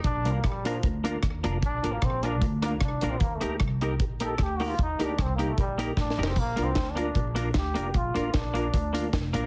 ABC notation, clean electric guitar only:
X:1
M:4/4
L:1/8
Q:1/4=152
K:Bb
V:1 name="Clean electric guitar"
z [B,DFB] z [B,DFB] z [B,DFB] z [B,DFB] | z [B,DFB] z [B,DFB] z [B,DFB] z [B,DFB] | z [B,EGB] z [B,EGB] z [B,EGB] z [B,EGB] | z [B,EGB] z [B,EGB] z [B,EGB] z [B,EGB] |
z [B,DFB] z [B,DFB] z [B,DFB] z [B,DFB] | z [B,DFB] z [B,DFB] z [B,DFB] z [B,DFB] |]